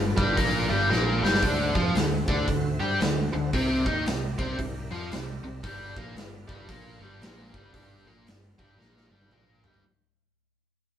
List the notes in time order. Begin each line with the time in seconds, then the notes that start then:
Already playing: G1 G2 F4 A4 B4 D5
0.17 G1 G2 G3, kick
0.37 A#1 A#2 A#3, kick, open hi-hat
0.69 G1 G2 G3
0.89 A#1 A#2 A#3, snare
1.22 G1 G2 G3, snare
1.34 snare
1.42 D2 D3 D4 F#4 A4 C5 E5, kick, open hi-hat
1.75 F2 F3 F4, kick
1.94 D2 D3, snare, open hi-hat
2.28 D2 D3 D4, kick
2.47 D2 D3, kick, open hi-hat
2.80 G2 G3 G4
3.00 D2 D3, snare, open hi-hat
3.33 D2 D3
3.53 C2 C3 C4 G4 A#4 D5 E5, kick, open hi-hat
3.86 D#2 D#3 D#4, kick
4.06 C2 C3, snare, open hi-hat
4.39 C2 C3 C4, kick
4.58 C2 C3, kick, open hi-hat
4.90 F2 F3 F4
5.11 C2 C3, snare, open hi-hat
5.43 C2 C3
5.63 G1 G2 G3 A4 B4 D5 F5, kick, open hi-hat
5.96 A#1 A#2 A#3, kick
6.15 G1 G2, snare, open hi-hat
6.48 G1 G2 G3, kick
6.69 A#1 A#2 A#3, kick, open hi-hat
7.00 G1 G2 G3
7.19 A#1 A#2 A#3, open hi-hat
7.23 snare
7.54 G1 G2 G3, kick
7.73 G1 G2 G3, kick, open hi-hat
8.05 A#1 A#2 A#3
8.24 G1 G2, open hi-hat
8.28 snare
8.58 G1 G2 G3, kick
8.76 A#1 A#2 A#3
8.81 snare
8.97 snare
9.10 G1 G2 G3
9.21 high tom
9.31 A#1 A#2 A#3, mid tom
9.63 G1 G2 G3, floor tom
9.74 floor tom